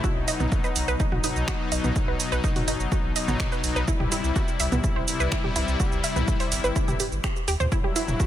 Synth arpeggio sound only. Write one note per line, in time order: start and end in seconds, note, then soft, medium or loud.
0.04 0.09 F#4 medium
0.28 0.35 D#5 medium
0.40 0.45 B3 medium
0.64 0.71 B4 medium
0.88 0.95 B4 loud
1.00 1.05 D#4 loud
1.12 1.17 F#4 medium
1.24 1.31 D#4 medium
1.48 1.53 F#4 medium
1.72 1.79 D#5 medium
1.84 1.89 B3 medium
2.08 2.15 B4 medium
2.32 2.39 B4 loud
2.44 2.49 D#4 loud
2.56 2.61 F#4 medium
2.68 2.75 D#4 medium
2.92 2.97 F#4 medium
3.16 3.23 D#5 medium
3.28 3.33 B3 medium
3.52 3.59 B4 medium
3.76 3.83 B4 loud
3.88 3.93 E4 loud
4.00 4.05 G4 medium
4.12 4.19 E4 medium
4.36 4.41 F#4 medium
4.60 4.67 E5 medium
4.72 4.77 B3 medium
4.96 5.03 C5 medium
5.20 5.27 B4 loud
5.32 5.37 E4 loud
5.44 5.49 G4 medium
5.56 5.63 E4 medium
5.80 5.85 F#4 medium
6.04 6.11 E5 medium
6.16 6.21 B3 medium
6.40 6.47 C5 medium
6.64 6.71 B4 loud
6.76 6.81 E4 loud
6.88 6.93 G4 medium
7.00 7.05 G4 medium
7.24 7.31 G4 medium
7.48 7.53 G4 loud
7.60 7.65 C5 loud
7.72 7.77 E4 loud
7.84 7.89 G4 medium
7.96 8.03 E4 medium
8.20 8.25 F#4 medium